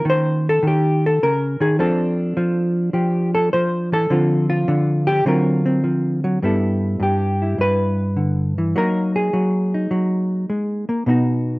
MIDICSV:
0, 0, Header, 1, 2, 480
1, 0, Start_track
1, 0, Tempo, 580271
1, 1472, Time_signature, 4, 2, 24, 8
1, 9588, End_track
2, 0, Start_track
2, 0, Title_t, "Hollow-body jazz guitar"
2, 0, Program_c, 0, 26
2, 0, Note_on_c, 0, 58, 49
2, 0, Note_on_c, 0, 61, 45
2, 0, Note_on_c, 0, 65, 47
2, 42, Note_on_c, 0, 51, 73
2, 80, Note_on_c, 0, 72, 102
2, 386, Note_off_c, 0, 72, 0
2, 404, Note_off_c, 0, 65, 0
2, 408, Note_on_c, 0, 69, 92
2, 508, Note_off_c, 0, 51, 0
2, 518, Note_on_c, 0, 51, 70
2, 537, Note_off_c, 0, 69, 0
2, 557, Note_on_c, 0, 67, 81
2, 864, Note_off_c, 0, 67, 0
2, 879, Note_on_c, 0, 69, 84
2, 995, Note_off_c, 0, 51, 0
2, 1012, Note_off_c, 0, 69, 0
2, 1016, Note_on_c, 0, 49, 52
2, 1019, Note_on_c, 0, 70, 100
2, 1324, Note_off_c, 0, 49, 0
2, 1327, Note_on_c, 0, 51, 65
2, 1334, Note_off_c, 0, 70, 0
2, 1336, Note_on_c, 0, 68, 98
2, 1462, Note_off_c, 0, 58, 0
2, 1462, Note_off_c, 0, 61, 0
2, 1475, Note_off_c, 0, 51, 0
2, 1480, Note_off_c, 0, 68, 0
2, 1481, Note_on_c, 0, 53, 75
2, 1486, Note_on_c, 0, 60, 46
2, 1490, Note_on_c, 0, 69, 80
2, 1492, Note_on_c, 0, 62, 50
2, 1956, Note_off_c, 0, 53, 0
2, 1959, Note_on_c, 0, 53, 78
2, 2287, Note_off_c, 0, 69, 0
2, 2423, Note_off_c, 0, 53, 0
2, 2427, Note_on_c, 0, 53, 68
2, 2432, Note_on_c, 0, 67, 46
2, 2758, Note_off_c, 0, 67, 0
2, 2768, Note_on_c, 0, 69, 96
2, 2907, Note_off_c, 0, 53, 0
2, 2914, Note_off_c, 0, 69, 0
2, 2920, Note_on_c, 0, 72, 89
2, 2927, Note_on_c, 0, 53, 60
2, 3242, Note_off_c, 0, 72, 0
2, 3245, Note_on_c, 0, 52, 60
2, 3246, Note_off_c, 0, 53, 0
2, 3255, Note_on_c, 0, 69, 98
2, 3377, Note_off_c, 0, 60, 0
2, 3390, Note_off_c, 0, 52, 0
2, 3393, Note_on_c, 0, 50, 74
2, 3398, Note_on_c, 0, 53, 54
2, 3405, Note_on_c, 0, 60, 49
2, 3406, Note_off_c, 0, 62, 0
2, 3410, Note_on_c, 0, 65, 48
2, 3709, Note_off_c, 0, 65, 0
2, 3719, Note_on_c, 0, 65, 92
2, 3725, Note_off_c, 0, 69, 0
2, 3861, Note_off_c, 0, 50, 0
2, 3871, Note_on_c, 0, 50, 86
2, 4194, Note_on_c, 0, 67, 108
2, 4197, Note_off_c, 0, 65, 0
2, 4330, Note_off_c, 0, 50, 0
2, 4336, Note_off_c, 0, 60, 0
2, 4346, Note_off_c, 0, 67, 0
2, 4349, Note_on_c, 0, 50, 71
2, 4352, Note_off_c, 0, 53, 0
2, 4354, Note_on_c, 0, 60, 54
2, 4356, Note_on_c, 0, 54, 62
2, 4366, Note_on_c, 0, 65, 57
2, 4371, Note_on_c, 0, 70, 66
2, 4669, Note_off_c, 0, 60, 0
2, 4679, Note_on_c, 0, 60, 58
2, 4826, Note_off_c, 0, 54, 0
2, 4829, Note_on_c, 0, 53, 58
2, 5156, Note_off_c, 0, 53, 0
2, 5163, Note_on_c, 0, 54, 63
2, 5290, Note_off_c, 0, 50, 0
2, 5290, Note_off_c, 0, 60, 0
2, 5299, Note_off_c, 0, 65, 0
2, 5299, Note_off_c, 0, 70, 0
2, 5310, Note_off_c, 0, 54, 0
2, 5315, Note_on_c, 0, 43, 63
2, 5320, Note_on_c, 0, 55, 41
2, 5325, Note_on_c, 0, 59, 45
2, 5335, Note_on_c, 0, 64, 46
2, 5339, Note_on_c, 0, 69, 43
2, 5777, Note_off_c, 0, 43, 0
2, 5787, Note_on_c, 0, 43, 65
2, 5803, Note_off_c, 0, 69, 0
2, 5813, Note_on_c, 0, 67, 75
2, 6135, Note_off_c, 0, 64, 0
2, 6138, Note_on_c, 0, 64, 42
2, 6263, Note_off_c, 0, 43, 0
2, 6272, Note_on_c, 0, 43, 60
2, 6280, Note_off_c, 0, 67, 0
2, 6295, Note_on_c, 0, 71, 89
2, 6754, Note_on_c, 0, 50, 50
2, 7080, Note_off_c, 0, 50, 0
2, 7099, Note_on_c, 0, 52, 55
2, 7217, Note_off_c, 0, 55, 0
2, 7220, Note_off_c, 0, 59, 0
2, 7221, Note_off_c, 0, 64, 0
2, 7231, Note_off_c, 0, 43, 0
2, 7239, Note_off_c, 0, 52, 0
2, 7242, Note_off_c, 0, 71, 0
2, 7243, Note_on_c, 0, 54, 68
2, 7251, Note_on_c, 0, 58, 47
2, 7260, Note_on_c, 0, 63, 45
2, 7261, Note_on_c, 0, 70, 91
2, 7572, Note_off_c, 0, 70, 0
2, 7575, Note_on_c, 0, 68, 81
2, 7717, Note_off_c, 0, 54, 0
2, 7721, Note_on_c, 0, 54, 67
2, 8057, Note_off_c, 0, 63, 0
2, 8060, Note_on_c, 0, 63, 48
2, 8193, Note_off_c, 0, 54, 0
2, 8196, Note_on_c, 0, 54, 59
2, 8674, Note_off_c, 0, 54, 0
2, 8682, Note_on_c, 0, 56, 49
2, 9003, Note_off_c, 0, 56, 0
2, 9007, Note_off_c, 0, 58, 0
2, 9007, Note_on_c, 0, 58, 53
2, 9145, Note_off_c, 0, 63, 0
2, 9151, Note_on_c, 0, 47, 67
2, 9155, Note_off_c, 0, 58, 0
2, 9161, Note_off_c, 0, 68, 0
2, 9162, Note_on_c, 0, 59, 44
2, 9171, Note_on_c, 0, 63, 46
2, 9176, Note_on_c, 0, 66, 47
2, 9588, Note_off_c, 0, 47, 0
2, 9588, Note_off_c, 0, 59, 0
2, 9588, Note_off_c, 0, 63, 0
2, 9588, Note_off_c, 0, 66, 0
2, 9588, End_track
0, 0, End_of_file